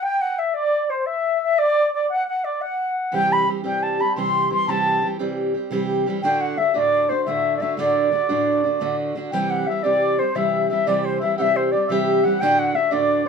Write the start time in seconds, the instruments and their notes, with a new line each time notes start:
0.03 flute G5, accordion G5
0.21 flute F#5
0.38 accordion E5, flute E5
0.54 flute D5, accordion D5
0.90 accordion C5, flute C5
1.06 flute E5, accordion E5
1.42 flute E5
1.58 accordion D5, flute D5
1.93 accordion D5, flute D5
2.10 accordion F#5, flute F#5
2.28 accordion F#5, flute F#5
2.44 accordion D5, flute D5
2.61 accordion F#5, flute F#5
3.12 steel-string acoustic guitar C3 E3 G3 C4 G4, flute G5, accordion G5
3.32 flute B5, accordion B5
3.47 steel-string acoustic guitar E3 G3 C4 G4
3.64 steel-string acoustic guitar C3 E3 G3 C4 G4, accordion G5, flute G5
3.83 flute A5, accordion A5
3.99 steel-string acoustic guitar G3 C4 G4, flute B5
4.16 steel-string acoustic guitar C3 E3 G3 C4 G4, accordion C6, flute C6
4.50 steel-string acoustic guitar E3 G3 C4 G4, accordion C6, flute C6
4.67 steel-string acoustic guitar C3 E3 G3 C4 G4, accordion A5, flute A5
4.90 accordion A5
5.02 steel-string acoustic guitar E3 G3 C4 G4
5.19 steel-string acoustic guitar C3 E3 G3 C4 G4
5.54 steel-string acoustic guitar G3 C4 G4
5.71 steel-string acoustic guitar C3 E3 G3 C4 G4
6.06 steel-string acoustic guitar E3 G3 C4 G4
6.23 steel-string acoustic guitar D2 A2 D3 A3 D4 F#4, accordion G5, flute G5
6.41 accordion F#5, flute F#5
6.58 steel-string acoustic guitar D3 A3 D4 F#4, flute E5, accordion E5
6.74 steel-string acoustic guitar D2 A2 D3 A3 D4 F#4, accordion D5, flute E5
6.78 flute D5
7.09 steel-string acoustic guitar D3 A3 D4 F#4, flute C5, accordion C5
7.25 steel-string acoustic guitar D2 A2 D3 A3 D4 F#4, flute E5, accordion E5
7.57 steel-string acoustic guitar D3, flute D5
7.61 steel-string acoustic guitar A3 D4 F#4, flute E5, accordion E5
7.77 steel-string acoustic guitar D2 A2 D3 A3 D4 F#4, flute D5, accordion D5
8.12 steel-string acoustic guitar D3 A3 D4 F#4
8.29 steel-string acoustic guitar D2 A2 D3 A3 D4 F#4
8.64 steel-string acoustic guitar D3 A3 D4 F#4
8.80 steel-string acoustic guitar D2 A2 D3 A3 D4 F#4
9.15 steel-string acoustic guitar D3 A3 D4 F#4
9.32 steel-string acoustic guitar C3 E3 G3 C4 G4, flute G5, accordion G5
9.50 flute F#5, accordion F#5
9.67 steel-string acoustic guitar E3 G3 C4, flute E5, accordion E5
9.71 steel-string acoustic guitar G4
9.83 steel-string acoustic guitar C3 E3 G3 C4 G4, flute D5, accordion D5
10.18 steel-string acoustic guitar G3 C4 G4, flute C5, accordion C5
10.35 steel-string acoustic guitar C3 E3 G3 C4 G4, flute E5, accordion E5
10.70 steel-string acoustic guitar E3 G3 C4 G4, accordion E5, flute E5
10.87 steel-string acoustic guitar C3 E3 G3 C4 G4, accordion D5, flute D5
11.05 flute C5, accordion C5
11.20 steel-string acoustic guitar E3 G3 C4, accordion E5, flute E5
11.25 steel-string acoustic guitar G4
11.38 steel-string acoustic guitar C3 E3 G3 C4 G4, accordion E5, flute E5 F#5
11.56 flute C5
11.72 steel-string acoustic guitar C4 G4, flute D5, accordion D5
11.76 steel-string acoustic guitar G3
11.87 steel-string acoustic guitar C3 E3 G3 C4, accordion E5, flute E5
11.92 steel-string acoustic guitar G4
12.24 steel-string acoustic guitar E3 G3 C4 G4, accordion F#5, flute F#5
12.40 steel-string acoustic guitar D2 A2 D3 A3 D4 F#4, flute G5, accordion G5
12.58 accordion F#5, flute F#5
12.75 steel-string acoustic guitar D3 A3 D4 F#4, flute E5, accordion E5
12.91 steel-string acoustic guitar D2 A2 D3 A3 D4 F#4, accordion D5, flute D5
13.25 steel-string acoustic guitar F#4, accordion C5